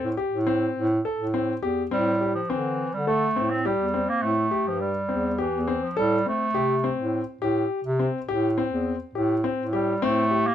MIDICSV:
0, 0, Header, 1, 4, 480
1, 0, Start_track
1, 0, Key_signature, 0, "minor"
1, 0, Tempo, 578592
1, 1592, Time_signature, 7, 2, 24, 8
1, 8751, End_track
2, 0, Start_track
2, 0, Title_t, "Grand piano"
2, 0, Program_c, 0, 0
2, 144, Note_on_c, 0, 67, 69
2, 298, Note_off_c, 0, 67, 0
2, 387, Note_on_c, 0, 60, 75
2, 691, Note_off_c, 0, 60, 0
2, 871, Note_on_c, 0, 69, 64
2, 1023, Note_off_c, 0, 69, 0
2, 1110, Note_on_c, 0, 60, 71
2, 1262, Note_off_c, 0, 60, 0
2, 1348, Note_on_c, 0, 67, 74
2, 1501, Note_off_c, 0, 67, 0
2, 1587, Note_on_c, 0, 60, 72
2, 1740, Note_off_c, 0, 60, 0
2, 1831, Note_on_c, 0, 67, 54
2, 1983, Note_off_c, 0, 67, 0
2, 2072, Note_on_c, 0, 60, 72
2, 2375, Note_off_c, 0, 60, 0
2, 2549, Note_on_c, 0, 69, 65
2, 2702, Note_off_c, 0, 69, 0
2, 2789, Note_on_c, 0, 60, 68
2, 2942, Note_off_c, 0, 60, 0
2, 3031, Note_on_c, 0, 67, 73
2, 3183, Note_off_c, 0, 67, 0
2, 3267, Note_on_c, 0, 60, 62
2, 3572, Note_off_c, 0, 60, 0
2, 3743, Note_on_c, 0, 67, 66
2, 4050, Note_off_c, 0, 67, 0
2, 4219, Note_on_c, 0, 60, 56
2, 4375, Note_off_c, 0, 60, 0
2, 4466, Note_on_c, 0, 67, 73
2, 4620, Note_off_c, 0, 67, 0
2, 4708, Note_on_c, 0, 60, 69
2, 4861, Note_off_c, 0, 60, 0
2, 4950, Note_on_c, 0, 69, 78
2, 5103, Note_off_c, 0, 69, 0
2, 5193, Note_on_c, 0, 60, 53
2, 5345, Note_off_c, 0, 60, 0
2, 5429, Note_on_c, 0, 67, 74
2, 5582, Note_off_c, 0, 67, 0
2, 5673, Note_on_c, 0, 60, 72
2, 5976, Note_off_c, 0, 60, 0
2, 6153, Note_on_c, 0, 67, 75
2, 6456, Note_off_c, 0, 67, 0
2, 6631, Note_on_c, 0, 60, 67
2, 6784, Note_off_c, 0, 60, 0
2, 6873, Note_on_c, 0, 67, 75
2, 7025, Note_off_c, 0, 67, 0
2, 7115, Note_on_c, 0, 60, 71
2, 7417, Note_off_c, 0, 60, 0
2, 7593, Note_on_c, 0, 67, 60
2, 7744, Note_off_c, 0, 67, 0
2, 7831, Note_on_c, 0, 60, 75
2, 7983, Note_off_c, 0, 60, 0
2, 8071, Note_on_c, 0, 67, 69
2, 8223, Note_off_c, 0, 67, 0
2, 8314, Note_on_c, 0, 60, 88
2, 8465, Note_off_c, 0, 60, 0
2, 8552, Note_on_c, 0, 67, 60
2, 8703, Note_off_c, 0, 67, 0
2, 8751, End_track
3, 0, Start_track
3, 0, Title_t, "Clarinet"
3, 0, Program_c, 1, 71
3, 0, Note_on_c, 1, 69, 82
3, 154, Note_off_c, 1, 69, 0
3, 1596, Note_on_c, 1, 55, 87
3, 1929, Note_off_c, 1, 55, 0
3, 1950, Note_on_c, 1, 53, 71
3, 2075, Note_on_c, 1, 52, 69
3, 2088, Note_off_c, 1, 53, 0
3, 2438, Note_on_c, 1, 55, 78
3, 2450, Note_off_c, 1, 52, 0
3, 2544, Note_off_c, 1, 55, 0
3, 2549, Note_on_c, 1, 57, 86
3, 2909, Note_on_c, 1, 60, 77
3, 2921, Note_off_c, 1, 57, 0
3, 3036, Note_on_c, 1, 55, 81
3, 3049, Note_off_c, 1, 60, 0
3, 3392, Note_on_c, 1, 58, 88
3, 3404, Note_off_c, 1, 55, 0
3, 3507, Note_on_c, 1, 57, 84
3, 3519, Note_off_c, 1, 58, 0
3, 3880, Note_on_c, 1, 53, 71
3, 3892, Note_off_c, 1, 57, 0
3, 3986, Note_on_c, 1, 55, 75
3, 3999, Note_off_c, 1, 53, 0
3, 4470, Note_off_c, 1, 55, 0
3, 4480, Note_on_c, 1, 52, 70
3, 4840, Note_on_c, 1, 53, 72
3, 4853, Note_off_c, 1, 52, 0
3, 4957, Note_off_c, 1, 53, 0
3, 4963, Note_on_c, 1, 55, 88
3, 5182, Note_off_c, 1, 55, 0
3, 5210, Note_on_c, 1, 57, 83
3, 5889, Note_off_c, 1, 57, 0
3, 8076, Note_on_c, 1, 55, 80
3, 8325, Note_on_c, 1, 57, 99
3, 8338, Note_off_c, 1, 55, 0
3, 8685, Note_on_c, 1, 58, 95
3, 8697, Note_off_c, 1, 57, 0
3, 8751, Note_off_c, 1, 58, 0
3, 8751, End_track
4, 0, Start_track
4, 0, Title_t, "Bass clarinet"
4, 0, Program_c, 2, 71
4, 31, Note_on_c, 2, 45, 76
4, 131, Note_off_c, 2, 45, 0
4, 264, Note_on_c, 2, 45, 86
4, 568, Note_off_c, 2, 45, 0
4, 629, Note_on_c, 2, 45, 92
4, 831, Note_off_c, 2, 45, 0
4, 988, Note_on_c, 2, 45, 78
4, 1291, Note_off_c, 2, 45, 0
4, 1345, Note_on_c, 2, 40, 72
4, 1549, Note_off_c, 2, 40, 0
4, 1593, Note_on_c, 2, 45, 79
4, 1995, Note_off_c, 2, 45, 0
4, 2079, Note_on_c, 2, 50, 69
4, 2378, Note_off_c, 2, 50, 0
4, 2428, Note_on_c, 2, 50, 87
4, 2732, Note_off_c, 2, 50, 0
4, 2795, Note_on_c, 2, 45, 82
4, 3096, Note_off_c, 2, 45, 0
4, 3145, Note_on_c, 2, 40, 74
4, 3349, Note_off_c, 2, 40, 0
4, 3509, Note_on_c, 2, 45, 83
4, 3712, Note_off_c, 2, 45, 0
4, 3873, Note_on_c, 2, 43, 73
4, 4175, Note_off_c, 2, 43, 0
4, 4223, Note_on_c, 2, 40, 82
4, 4529, Note_off_c, 2, 40, 0
4, 4585, Note_on_c, 2, 40, 86
4, 4790, Note_off_c, 2, 40, 0
4, 4947, Note_on_c, 2, 45, 85
4, 5151, Note_off_c, 2, 45, 0
4, 5422, Note_on_c, 2, 48, 73
4, 5728, Note_off_c, 2, 48, 0
4, 5789, Note_on_c, 2, 45, 79
4, 5992, Note_off_c, 2, 45, 0
4, 6149, Note_on_c, 2, 45, 84
4, 6352, Note_off_c, 2, 45, 0
4, 6506, Note_on_c, 2, 48, 94
4, 6710, Note_off_c, 2, 48, 0
4, 6875, Note_on_c, 2, 45, 89
4, 7175, Note_off_c, 2, 45, 0
4, 7233, Note_on_c, 2, 40, 81
4, 7434, Note_off_c, 2, 40, 0
4, 7591, Note_on_c, 2, 45, 89
4, 7892, Note_off_c, 2, 45, 0
4, 7961, Note_on_c, 2, 45, 77
4, 8258, Note_off_c, 2, 45, 0
4, 8312, Note_on_c, 2, 45, 74
4, 8713, Note_off_c, 2, 45, 0
4, 8751, End_track
0, 0, End_of_file